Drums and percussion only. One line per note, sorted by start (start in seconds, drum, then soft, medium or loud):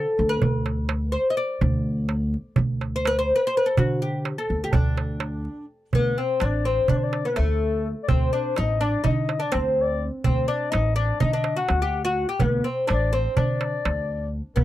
0.18 darbuka ka soft
0.42 darbuka dum medium
0.66 darbuka tek medium
0.89 darbuka tek medium
1.61 darbuka dum medium
2.09 darbuka tek medium
2.34 darbuka ka soft
2.56 darbuka dum medium
2.81 darbuka tek medium
3.05 darbuka tek medium
3.30 darbuka ka soft
3.77 darbuka dum loud
4.25 darbuka tek medium
4.49 darbuka ka soft
4.73 darbuka dum medium
4.97 darbuka tek medium
5.20 darbuka tek medium
5.45 darbuka ka soft
5.93 darbuka dum medium
6.40 darbuka tek medium
6.65 darbuka ka soft
6.88 darbuka dum medium
7.13 darbuka tek medium
7.36 darbuka tek medium
8.09 darbuka dum medium
8.56 darbuka tek medium
9.04 darbuka dum medium
9.29 darbuka tek medium
9.52 darbuka tek medium
10.24 darbuka dum medium
10.73 darbuka tek medium
10.97 darbuka ka soft
11.20 darbuka dum medium
11.44 darbuka tek medium
11.69 darbuka tek medium
12.40 darbuka dum medium
12.65 darbuka ka soft
12.89 darbuka tek medium
13.13 darbuka ka soft
13.37 darbuka dum medium
13.61 darbuka tek medium
13.85 darbuka tek medium
14.57 darbuka dum medium